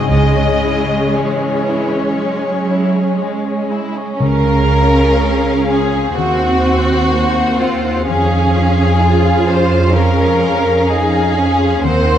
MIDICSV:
0, 0, Header, 1, 8, 480
1, 0, Start_track
1, 0, Key_signature, 4, "minor"
1, 0, Tempo, 1052632
1, 40, Time_signature, 4, 2, 24, 8
1, 1000, Tempo, 1001669
1, 1964, Key_signature, -5, "major"
1, 2440, Tempo, 960000
1, 3880, Tempo, 938967
1, 5978, End_track
2, 0, Start_track
2, 0, Title_t, "Violin section"
2, 0, Program_c, 0, 48
2, 46, Note_on_c, 0, 75, 58
2, 515, Note_off_c, 0, 75, 0
2, 527, Note_on_c, 0, 73, 42
2, 1728, Note_off_c, 0, 73, 0
2, 1969, Note_on_c, 0, 77, 38
2, 2908, Note_off_c, 0, 77, 0
2, 2931, Note_on_c, 0, 78, 43
2, 3881, Note_on_c, 0, 77, 43
2, 3882, Note_off_c, 0, 78, 0
2, 5781, Note_off_c, 0, 77, 0
2, 5803, Note_on_c, 0, 78, 44
2, 5978, Note_off_c, 0, 78, 0
2, 5978, End_track
3, 0, Start_track
3, 0, Title_t, "Harp"
3, 0, Program_c, 1, 46
3, 0, Note_on_c, 1, 49, 35
3, 0, Note_on_c, 1, 56, 29
3, 0, Note_on_c, 1, 72, 30
3, 3, Note_on_c, 1, 64, 28
3, 24, Note_on_c, 1, 73, 26
3, 51, Note_off_c, 1, 72, 0
3, 1778, Note_off_c, 1, 49, 0
3, 1799, Note_off_c, 1, 56, 0
3, 1821, Note_off_c, 1, 64, 0
3, 1843, Note_off_c, 1, 73, 0
3, 1965, Note_on_c, 1, 49, 40
3, 2085, Note_on_c, 1, 61, 30
3, 2204, Note_on_c, 1, 56, 29
3, 2322, Note_on_c, 1, 65, 31
3, 2442, Note_on_c, 1, 73, 34
3, 2566, Note_on_c, 1, 68, 34
3, 2682, Note_off_c, 1, 65, 0
3, 2688, Note_on_c, 1, 65, 33
3, 2802, Note_off_c, 1, 56, 0
3, 2808, Note_on_c, 1, 56, 30
3, 2926, Note_on_c, 1, 51, 40
3, 2944, Note_off_c, 1, 49, 0
3, 2945, Note_off_c, 1, 56, 0
3, 2945, Note_off_c, 1, 61, 0
3, 2945, Note_off_c, 1, 65, 0
3, 2945, Note_off_c, 1, 68, 0
3, 2945, Note_off_c, 1, 73, 0
3, 3047, Note_on_c, 1, 63, 33
3, 3162, Note_on_c, 1, 60, 31
3, 3280, Note_on_c, 1, 66, 33
3, 3400, Note_on_c, 1, 72, 36
3, 3514, Note_off_c, 1, 66, 0
3, 3520, Note_on_c, 1, 66, 35
3, 3632, Note_off_c, 1, 60, 0
3, 3638, Note_on_c, 1, 60, 33
3, 3753, Note_off_c, 1, 63, 0
3, 3759, Note_on_c, 1, 63, 36
3, 3878, Note_on_c, 1, 53, 44
3, 3898, Note_off_c, 1, 60, 0
3, 3898, Note_off_c, 1, 63, 0
3, 3899, Note_off_c, 1, 51, 0
3, 3899, Note_off_c, 1, 66, 0
3, 3899, Note_off_c, 1, 72, 0
3, 3998, Note_on_c, 1, 56, 32
3, 4120, Note_on_c, 1, 65, 31
3, 4241, Note_on_c, 1, 73, 36
3, 4362, Note_on_c, 1, 68, 35
3, 4482, Note_on_c, 1, 77, 36
3, 4593, Note_off_c, 1, 73, 0
3, 4599, Note_on_c, 1, 73, 36
3, 4711, Note_off_c, 1, 65, 0
3, 4717, Note_on_c, 1, 65, 34
3, 4833, Note_off_c, 1, 53, 0
3, 4839, Note_on_c, 1, 53, 38
3, 4954, Note_off_c, 1, 56, 0
3, 4960, Note_on_c, 1, 56, 36
3, 5074, Note_off_c, 1, 65, 0
3, 5080, Note_on_c, 1, 65, 36
3, 5196, Note_off_c, 1, 73, 0
3, 5203, Note_on_c, 1, 73, 34
3, 5316, Note_off_c, 1, 68, 0
3, 5322, Note_on_c, 1, 68, 39
3, 5434, Note_off_c, 1, 77, 0
3, 5440, Note_on_c, 1, 77, 36
3, 5556, Note_off_c, 1, 73, 0
3, 5562, Note_on_c, 1, 73, 39
3, 5675, Note_off_c, 1, 65, 0
3, 5681, Note_on_c, 1, 65, 36
3, 5801, Note_on_c, 1, 51, 43
3, 5819, Note_off_c, 1, 53, 0
3, 5819, Note_off_c, 1, 56, 0
3, 5819, Note_off_c, 1, 77, 0
3, 5820, Note_off_c, 1, 65, 0
3, 5820, Note_off_c, 1, 68, 0
3, 5820, Note_off_c, 1, 73, 0
3, 5920, Note_on_c, 1, 63, 37
3, 5978, Note_off_c, 1, 51, 0
3, 5978, Note_off_c, 1, 63, 0
3, 5978, End_track
4, 0, Start_track
4, 0, Title_t, "Violin section"
4, 0, Program_c, 2, 48
4, 0, Note_on_c, 2, 68, 41
4, 47, Note_on_c, 2, 56, 38
4, 156, Note_off_c, 2, 56, 0
4, 165, Note_on_c, 2, 61, 32
4, 283, Note_off_c, 2, 61, 0
4, 290, Note_on_c, 2, 64, 32
4, 404, Note_on_c, 2, 61, 30
4, 406, Note_off_c, 2, 64, 0
4, 520, Note_on_c, 2, 56, 34
4, 523, Note_off_c, 2, 61, 0
4, 641, Note_off_c, 2, 56, 0
4, 645, Note_on_c, 2, 61, 31
4, 764, Note_off_c, 2, 61, 0
4, 768, Note_on_c, 2, 64, 31
4, 884, Note_on_c, 2, 61, 30
4, 885, Note_off_c, 2, 64, 0
4, 1001, Note_off_c, 2, 61, 0
4, 1005, Note_on_c, 2, 56, 35
4, 1117, Note_off_c, 2, 56, 0
4, 1122, Note_on_c, 2, 61, 31
4, 1244, Note_off_c, 2, 61, 0
4, 1248, Note_on_c, 2, 64, 31
4, 1367, Note_off_c, 2, 64, 0
4, 1371, Note_on_c, 2, 61, 33
4, 1485, Note_on_c, 2, 56, 29
4, 1488, Note_off_c, 2, 61, 0
4, 1604, Note_off_c, 2, 56, 0
4, 1604, Note_on_c, 2, 61, 29
4, 1725, Note_off_c, 2, 61, 0
4, 1727, Note_on_c, 2, 64, 30
4, 1847, Note_off_c, 2, 64, 0
4, 1847, Note_on_c, 2, 61, 37
4, 1864, Note_off_c, 2, 68, 0
4, 1965, Note_off_c, 2, 61, 0
4, 1965, Note_on_c, 2, 70, 67
4, 2665, Note_off_c, 2, 70, 0
4, 2688, Note_on_c, 2, 68, 50
4, 2926, Note_on_c, 2, 66, 68
4, 2927, Note_off_c, 2, 68, 0
4, 3626, Note_off_c, 2, 66, 0
4, 3641, Note_on_c, 2, 65, 53
4, 3880, Note_off_c, 2, 65, 0
4, 3884, Note_on_c, 2, 68, 67
4, 4588, Note_off_c, 2, 68, 0
4, 4604, Note_on_c, 2, 72, 59
4, 4842, Note_off_c, 2, 72, 0
4, 4844, Note_on_c, 2, 70, 60
4, 5322, Note_off_c, 2, 70, 0
4, 5323, Note_on_c, 2, 68, 61
4, 5800, Note_on_c, 2, 72, 85
4, 5802, Note_off_c, 2, 68, 0
4, 5978, Note_off_c, 2, 72, 0
4, 5978, End_track
5, 0, Start_track
5, 0, Title_t, "Viola section"
5, 0, Program_c, 3, 48
5, 0, Note_on_c, 3, 56, 46
5, 44, Note_on_c, 3, 61, 42
5, 1865, Note_off_c, 3, 61, 0
5, 1866, Note_off_c, 3, 56, 0
5, 1966, Note_on_c, 3, 68, 42
5, 1968, Note_on_c, 3, 61, 42
5, 2906, Note_off_c, 3, 68, 0
5, 2907, Note_off_c, 3, 61, 0
5, 2928, Note_on_c, 3, 72, 40
5, 2929, Note_on_c, 3, 60, 40
5, 3861, Note_off_c, 3, 72, 0
5, 3879, Note_on_c, 3, 68, 45
5, 3880, Note_on_c, 3, 61, 42
5, 3881, Note_off_c, 3, 60, 0
5, 5801, Note_off_c, 3, 61, 0
5, 5801, Note_off_c, 3, 68, 0
5, 5801, Note_on_c, 3, 58, 44
5, 5801, Note_on_c, 3, 70, 48
5, 5978, Note_off_c, 3, 58, 0
5, 5978, Note_off_c, 3, 70, 0
5, 5978, End_track
6, 0, Start_track
6, 0, Title_t, "Cello section"
6, 0, Program_c, 4, 48
6, 44, Note_on_c, 4, 49, 36
6, 466, Note_off_c, 4, 49, 0
6, 524, Note_on_c, 4, 52, 38
6, 983, Note_off_c, 4, 52, 0
6, 1002, Note_on_c, 4, 54, 42
6, 1486, Note_off_c, 4, 54, 0
6, 1486, Note_on_c, 4, 56, 36
6, 1965, Note_off_c, 4, 56, 0
6, 1967, Note_on_c, 4, 61, 46
6, 2907, Note_off_c, 4, 61, 0
6, 2928, Note_on_c, 4, 60, 44
6, 3401, Note_off_c, 4, 60, 0
6, 3402, Note_on_c, 4, 58, 43
6, 3641, Note_off_c, 4, 58, 0
6, 3641, Note_on_c, 4, 60, 38
6, 3880, Note_off_c, 4, 60, 0
6, 3881, Note_on_c, 4, 61, 44
6, 4353, Note_off_c, 4, 61, 0
6, 4362, Note_on_c, 4, 65, 48
6, 4839, Note_on_c, 4, 61, 48
6, 4841, Note_off_c, 4, 65, 0
6, 5320, Note_off_c, 4, 61, 0
6, 5321, Note_on_c, 4, 63, 48
6, 5561, Note_off_c, 4, 63, 0
6, 5564, Note_on_c, 4, 61, 44
6, 5802, Note_off_c, 4, 61, 0
6, 5803, Note_on_c, 4, 60, 51
6, 5978, Note_off_c, 4, 60, 0
6, 5978, End_track
7, 0, Start_track
7, 0, Title_t, "Timpani"
7, 0, Program_c, 5, 47
7, 1962, Note_on_c, 5, 49, 48
7, 2664, Note_off_c, 5, 49, 0
7, 5978, End_track
8, 0, Start_track
8, 0, Title_t, "Double bass section"
8, 0, Program_c, 6, 48
8, 43, Note_on_c, 6, 37, 36
8, 505, Note_off_c, 6, 37, 0
8, 1963, Note_on_c, 6, 37, 41
8, 2905, Note_off_c, 6, 37, 0
8, 2928, Note_on_c, 6, 39, 44
8, 3880, Note_off_c, 6, 39, 0
8, 3881, Note_on_c, 6, 41, 44
8, 5802, Note_off_c, 6, 41, 0
8, 5803, Note_on_c, 6, 39, 49
8, 5978, Note_off_c, 6, 39, 0
8, 5978, End_track
0, 0, End_of_file